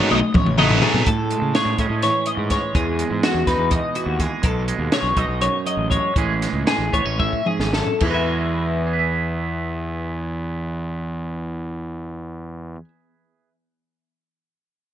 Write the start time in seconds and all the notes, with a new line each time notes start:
Already playing: B2 F#3 A3 D#4 C#5
0.11 B1 D#5, high tom
0.34 A1 C#5, kick, mid tom
0.46 mid tom
0.58 B2 F#3 A3 D#4 D#5, mid tom
0.70 floor tom
0.82 B2 F#3 A3 D#4 G#4, floor tom
0.94 B2, floor tom
1.06 A2 A4, kick, closed hi-hat
1.31 G#3, closed hi-hat
1.42 C#3
1.55 G#4 C#5, snare, closed hi-hat
1.65 A2
1.78 A2 C#4 D#5, kick, closed hi-hat
1.90 A2
2.02 E3 C#5, snare, closed hi-hat
2.26 E3 D#5, closed hi-hat
2.37 G#2
2.50 G#3 C#5, kick, snare, closed hi-hat
2.75 E2 G#4, kick, closed hi-hat
2.99 G#3, closed hi-hat
3.11 G#2
3.23 F#4, snare, closed hi-hat
3.35 E2
3.47 E2 D#4 B4, kick, snare, closed hi-hat
3.58 E2
3.71 B2 D#5, kick, closed hi-hat
3.95 E3 F#4, closed hi-hat
4.06 D#2
4.20 G#3 G#4, kick, closed hi-hat
4.43 B1 B2 A4, kick, closed hi-hat
4.68 G#3, closed hi-hat
4.79 D#2
4.92 C#5, snare, closed hi-hat
5.03 B1
5.17 B1 D#4 D#5, kick, closed hi-hat
5.28 B1
5.41 F#2 C#5, closed hi-hat
5.66 F#3 D#5, closed hi-hat
5.77 A1
5.90 G#3 C#5, kick, closed hi-hat
6.15 A1 A2 E3 G#3 C#4 G#4, kick, closed hi-hat
6.42 G#3, snare, closed hi-hat
6.53 C#2
6.67 G#4, snare, closed hi-hat
6.79 A1
6.93 A1 B3 C#5, kick, closed hi-hat
7.05 A1 C#4
7.19 A2 E5, kick, high tom
7.33 kick
7.45 G#2 G#4, mid tom
7.59 G#1, snare
7.73 F#2 A4, snare
7.87 floor tom
8.00 E2 E3 E4, kick, crash
8.05 G#3 F#4 G#4
8.10 B4 E5
8.87 G#4
8.93 B4
8.99 E5